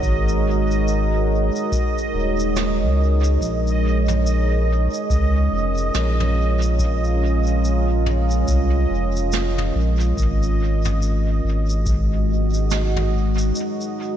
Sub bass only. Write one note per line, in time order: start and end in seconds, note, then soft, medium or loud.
0.03 1.50 G#1 medium
2.14 2.83 D#1 medium
2.82 3.38 C#2 loud
3.41 4.88 A#1 medium
5.10 5.48 C#2 medium
5.53 5.91 F1 medium
5.95 8.45 A#1 medium
8.48 8.86 C2 medium
8.90 9.72 F1 medium
9.75 10.13 A#1 loud
10.17 11.41 G#1 medium
11.44 13.52 G#1 medium